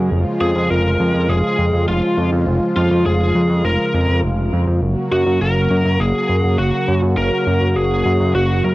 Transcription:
Already playing: F#2
0.11 F1 C#3 F3 G#3 F4
0.41 F2 G#4
0.56 F2
0.70 F1 A#4
1.00 F2
1.14 F2
1.29 F1 G#4
1.59 F2
1.73 F2
1.88 F1 F4
2.17 F2
2.32 F2
2.47 F1
2.76 F2 F4
2.91 F2
3.06 F1 G#4
3.35 F2
3.50 F2
3.65 F1 A#4
3.94 F2
4.09 F2
4.23 F1
4.53 F2
4.68 F2
4.82 F#1 F#3 A#3 F#4
5.12 F#2 F#4
5.27 F#2
5.41 F#1 A#4
5.70 F#2
5.85 F#2
6.00 F#1 G#4
6.29 F#2
6.44 F#2
6.58 F#1 F#4
6.88 F#2
7.03 F#2
7.17 F#1 A#4
7.47 F#2
7.61 F#2
7.76 F#1 G#4
8.06 F#2
8.20 F#2
8.35 F#1 F#4
8.64 F#2 A#4

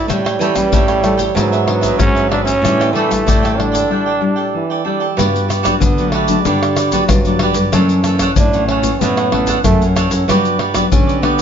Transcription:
0.04 A3 E4
0.08 A2 G3 C#4 E4 A4 C#5 G5, pandeiro, tamborim, shaker, surdo
0.25 A4 C#5 G5, pandeiro, tamborim, shaker
0.39 E3 G3 C#4 E4 A4 C#5 G5, pandeiro, shaker
0.56 G3 C#4 E4, muted cavaquinho stroke, pandeiro, tamborim, shaker, surdo
0.72 A2 E3 E4 A4 C#5 G5, pandeiro, shaker, surdo
0.88 A4 C#5 G5, pandeiro, tamborim, shaker
1.03 G3 A3 C#4 E4, pandeiro, tamborim, shaker
1.18 A4 C#5 G5, pandeiro, shaker, surdo
1.34 G#2 E3 F#3 B3 D4 G#4 B4 E5, pandeiro, tamborim, shaker, surdo
1.52 G#4 B4 E5, pandeiro, shaker
1.67 E3 B3 D4, muted cavaquinho stroke, pandeiro, tamborim
1.81 G#4 B4 E5, pandeiro, shaker, surdo
1.98 G#2 C#4, pandeiro, tamborim, shaker, surdo
2.15 G#4 B4 E5, pandeiro, shaker
2.29 E3 B3 D4 G#4 B4 E5, pandeiro, tamborim
2.45 C#4 G#4 B4 E5, pandeiro, shaker, surdo
2.63 A2 E3 G3 D4 E4 A4 D5 G5, pandeiro, tamborim, shaker, surdo
2.80 A4 D5 G5, pandeiro, tamborim, shaker
2.93 E3 G3 A3 D4 E4 A4 D5, pandeiro
2.97 G5
3.08 G3 D4 E4, muted cavaquinho stroke, pandeiro, tamborim, shaker, surdo
3.26 A2 D3 E3 D4 A4 D5 G5, pandeiro, shaker, surdo
3.43 A4 D5 G5, pandeiro, tamborim, shaker
3.57 G3 D4 E4, pandeiro, tamborim
3.72 A4 D5 G5, pandeiro, shaker, surdo
3.89 A2 G3 D4 E4 A4 D5 G5
4.06 A4 D5 G5
4.21 G3 D4 E4, muted cavaquinho stroke
4.36 A4 D5 G5
4.54 E3
4.70 A4 D5 G5
4.85 G3 D4 E4 A4 D5 G5
5.00 A4 D5 G5
5.17 G2 B3 D4 F#4 G4 B4 D5, pandeiro, tamborim, shaker, surdo
5.36 pandeiro, shaker
5.48 F#4 G4 B4 D5, pandeiro, tamborim, shaker
5.63 F#3 B3 D4 F#4 G4 B4 D5, pandeiro, tamborim, shaker, surdo
5.81 D3 B3, pandeiro, shaker, surdo
5.97 F#3 B3 D4 G4 B4 D5, pandeiro, shaker
6.12 A3 F#4 G4 B4 D5, pandeiro, tamborim
6.28 F#3 B3 D4, pandeiro, shaker, surdo
6.44 G2 D3 G3 B3 D4 F#4 G4 B4 D5, pandeiro, shaker, surdo
6.61 G4 B4 D5, pandeiro, tamborim, shaker
6.77 F#4 G4 B4 D5, pandeiro, tamborim, shaker
6.92 F#3 B3 D4 F#4 G4 B4 D5, pandeiro, shaker, surdo
7.08 G2 D3 F#3, pandeiro, tamborim, shaker, surdo
7.25 F#3 B3 D4 B4 D5, pandeiro, shaker, surdo
7.29 G4
7.39 F#4 G4 B4 D5, pandeiro, tamborim
7.54 G2 B4 D5, pandeiro, shaker
7.59 G4
7.73 F#2 E3 A3 C#4 D4 A4 C#5 F#5, pandeiro, tamborim, shaker, surdo
7.89 pandeiro, shaker
8.04 E3 A3 C#4 D4 A4 C#5 F#5, pandeiro, tamborim, shaker
8.19 D4 A4 C#5 F#5, pandeiro, tamborim, shaker, surdo
8.36 F#2 A2 D4, pandeiro, shaker, surdo
8.53 E3 A3 C#4 A4 C#5 F#5, pandeiro, shaker
8.68 C#4 A4 C#5 F#5, pandeiro, tamborim
8.82 E3 A3 C#4, pandeiro, shaker, surdo
9.00 F#2 A2 E3 A3 B3 C#4 D4 A4 C#5 F#5, pandeiro, shaker, surdo
9.17 A4 C#5 F#5, pandeiro, tamborim, shaker
9.31 E3 A3 C#4 D4 A4 C#5 F#5, pandeiro, tamborim, surdo
9.47 D4 A4 C#5 F#5, pandeiro, shaker, surdo
9.63 F#2 A3, pandeiro, tamborim, shaker, surdo
9.81 E3 A3 C#4 A4 C#5 F#5, pandeiro, shaker, surdo
9.96 D4 A4 C#5 F#5, pandeiro, tamborim, shaker
10.10 F#2 A4 C#5 F#5, pandeiro, shaker
10.28 G2 F#3 B3 D4 F#4 G4 B4 D5, pandeiro, tamborim, shaker, surdo
10.45 pandeiro, shaker
10.59 F#4 G4 B4 D5, pandeiro, tamborim
10.74 F#3 B3 D4 F#4 G4 B4 D5, pandeiro, tamborim, shaker, surdo
10.92 D3 C#4, pandeiro, shaker, surdo
11.07 G4 B4 D5, pandeiro, shaker
11.22 B3 D4 F#4 G4 B4 D5, pandeiro, tamborim

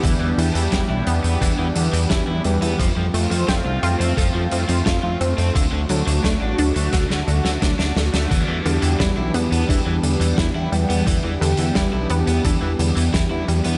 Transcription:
Already playing: E3 G3 B3 D4 G4
0.03 E2 D3 E3, kick, closed hi-hat
0.21 E2 E3
0.38 E2 E3, closed hi-hat
0.55 E2 E3, closed hi-hat
0.72 E2 G3 E4, kick, snare, closed hi-hat
0.90 B1 E4
1.07 E2 B3, closed hi-hat
1.24 E2 B3, closed hi-hat
1.41 E2 E3 D4, kick, closed hi-hat
1.59 E2 E3
1.76 E2 D3, closed hi-hat
1.93 E2 E3, closed hi-hat
2.10 E2 E3 E4, kick, snare, closed hi-hat
2.28 E2 E4
2.44 E2 G3, closed hi-hat
2.62 E2 B3, closed hi-hat
2.79 F2 F3 A3 C4 F4, kick, closed hi-hat
2.97 F2 F3
3.14 F2 A3, closed hi-hat
3.31 F2 F3, closed hi-hat
3.48 F2 C4 F4, kick, snare, closed hi-hat
3.66 C2 F4
3.83 F2 F4, closed hi-hat
4.00 F2 C4, closed hi-hat
4.17 F2 F3 A4, kick, closed hi-hat
4.34 F2 F3
4.51 F2 F3, closed hi-hat
4.69 F2 F3, closed hi-hat
4.86 F2 A3 F4, kick, snare, closed hi-hat
5.03 F2 F4
5.21 F2 C4, closed hi-hat
5.38 F2 C4, closed hi-hat
5.55 D2 D3 D4 F#4, kick, closed hi-hat
5.72 D2 D3
5.89 D2 F#3, closed hi-hat
6.07 D2 D3, closed hi-hat
6.24 D2 A3 D4, kick, snare, closed hi-hat
6.41 A1 D4
6.58 D2 D4, closed hi-hat
6.76 D2 A3, closed hi-hat
6.93 D2 D3 F#4, kick, snare, closed hi-hat
7.10 D2 D3, snare
7.28 D2 D3, closed hi-hat
7.45 D2 D3, snare, closed hi-hat
7.62 D2 F#3 D4, kick, snare, closed hi-hat
7.79 D2 D4, snare
7.96 D2 A3, snare, closed hi-hat
8.14 D2 A3, snare, closed hi-hat
8.31 E2 D3 E3 G3 B3 G4, kick, closed hi-hat, crash
8.48 E2 E3
8.65 E2 D3, closed hi-hat
8.82 E2 E3, closed hi-hat
9.00 E2 G3 E4, kick, snare, closed hi-hat
9.17 B1 E4
9.34 E2 B3, closed hi-hat
9.52 E2 B3, closed hi-hat
9.69 E2 E3 D4, kick, closed hi-hat
9.86 E2 E3
10.03 E2 D3, closed hi-hat
10.20 E2 E3, closed hi-hat
10.38 E2 E3 E4, kick, snare, closed hi-hat
10.55 E2 E4
10.72 E2 G3, closed hi-hat
10.89 E2 B3, closed hi-hat
11.07 E2 D3 E3, kick, closed hi-hat
11.24 E2 E3
11.41 E2 D3, closed hi-hat
11.57 E2 E3, closed hi-hat
11.75 E2 G3 E4, kick, snare, closed hi-hat
11.93 B1 E4
12.10 E2 B3, closed hi-hat
12.27 E2 B3, closed hi-hat
12.45 E2 E3 D4, kick, closed hi-hat
12.62 E2 E3
12.79 E2 D3, closed hi-hat
12.97 E2 E3, closed hi-hat
13.14 E2 E3 E4, kick, snare, closed hi-hat
13.31 E2 E4
13.48 E2 G3, closed hi-hat
13.64 E2 B3, closed hi-hat

